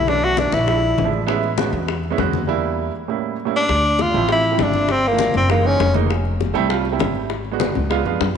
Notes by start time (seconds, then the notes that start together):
Already playing: B1
0.07 E3 A3 C#4 D4, high bongo, high conga
0.22 F#4, high bongo, high conga
0.37 D4, high bongo, high conga
0.52 A#1 E4, high bongo, high conga
0.67 F3 G#3 D4 E4, high bongo, high conga
0.83 high conga
0.98 A1, high bongo, low bongo, high conga
1.04 F3 G#3 D4 E4
1.13 high bongo
1.26 G#3 B3 C#4 E4, high bongo, high conga
1.43 high bongo, high conga
1.57 G#3 B3 C#4 F#4, high bongo, high conga
1.73 E2, high bongo, high conga
1.88 high bongo, high conga
2.03 high conga
2.10 G#3 B3 C#4 E4
2.18 E2 G#3 B3 C#4 F#4, high bongo, low bongo, high conga
2.33 high bongo, high conga
2.47 G3 A#3 D4 E4
3.08 A2 G3 A#3 C#4 E4
3.45 A2 G3 A#3 C#4 E4
3.56 D4
3.69 D2, high bongo, high conga
3.84 high conga
3.99 F4, high bongo, high conga
4.13 A1 F3 A3 C4 E4, high bongo, high conga
4.28 F3 A3 C4 E4, high bongo, high conga
4.44 high bongo, high conga
4.51 F3 A3 C4 E4
4.59 G1, high bongo, low bongo, high conga
4.63 D4
4.74 high bongo, high conga
4.89 C4, high bongo, high conga
5.04 A#3, high conga
5.11 F3 A3 A#3 D4
5.19 high bongo, high conga
5.34 F#1 C4, high bongo, high conga, low conga
5.49 E3 G#3 A#3 D#4, high bongo
5.63 E3 G#3 A#3 C#4 D#4, high bongo, high conga
5.80 F1, high bongo, low bongo, high conga
5.93 E3 G#3 A#3 D#4, high bongo, high conga
6.10 high bongo, high conga
6.25 high conga
6.41 high bongo, high conga
6.54 C2 G3 A3 C4 E4, high bongo, high conga
6.69 G3 A3 C4 F4, high bongo, high conga
6.85 high bongo, high conga
6.91 G3 A3 C4 E4
6.99 G#1, high bongo, low bongo, high conga
7.15 high bongo
7.30 high bongo, high conga
7.45 high conga
7.51 G#3 B3 D4 F#4
7.60 high bongo, high conga
7.75 C#2, high bongo, high conga, low conga
7.90 G#3 B3 D4 F4, high bongo, high conga
8.05 F2 G#3 B3 D4 F4, high bongo, high conga
8.21 F#2, high bongo, low bongo, high conga